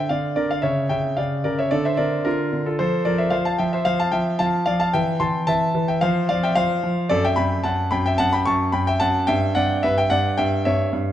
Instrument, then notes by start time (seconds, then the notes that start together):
grand piano
Already playing: G5
0.09 D3 D5 F5
0.36 D3 A#4 D5
0.51 D5 F5
0.62 C#3 C#5 E5
0.89 C#3 E5 G5
1.17 C#3 D5 F5
1.44 C#3 A#4 D5
1.59 C#5 E5
1.71 D3 A4 D5
1.85 C5 E5
1.97 D3 A#4 D5
2.25 D3 F4 A#4
2.53 D3
2.66 F4 A4
2.79 F3 A4 C5
3.05 F3 A#4 D5
3.18 C5 E5
3.30 F3 C5 F5
3.45 F5 A5
3.58 F3 E5 G5
3.73 C5 E5
3.85 F3 C5 F5
4.00 F5 A5
4.12 F3 E5 G5
4.39 F3 F5 A5
4.66 F3 D5 F5
4.80 F5 A5
4.93 E3 E5 G5
5.20 E3 A5 C6
5.47 E3 E5 A5
5.75 E3
5.88 E5 G5
6.01 F3 C5 F5
6.29 F3 D5 F5
6.43 E5 G5
6.55 F3 C5 F5
6.84 F3
7.09 F#2 A4 D5
7.24 E5 G5
7.36 F#2 G5 B5
7.63 F#2 F#5 A5
7.91 F#2 G5 B5
8.06 E5 G5
8.18 F#2 F#5 A5
8.33 G5 B5
8.46 F#2 A5 C#6
8.72 F#2 G5 B5
8.87 E5 G5
9.00 F#2 F#5 A5
9.27 G2 E5 G5
9.55 G2 D5 F#5
9.83 G2 B4 E5
9.98 E5 G5
10.10 G2 D5 F#5
10.38 G2 E5 G5
10.65 G2 C#5 E5
10.93 G2